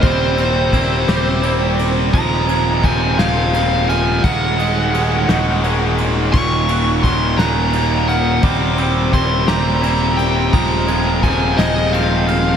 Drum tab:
CC |------|------|------|x-----|
RD |xxxxxx|xxxxxx|xxxxxx|-xxxxx|
SD |---o--|---o--|---o--|---o--|
BD |o-o---|o-o---|o-----|o-o---|

CC |------|------|
RD |xxxxxx|xxxxxx|
SD |---o--|---o--|
BD |o-o---|o-o---|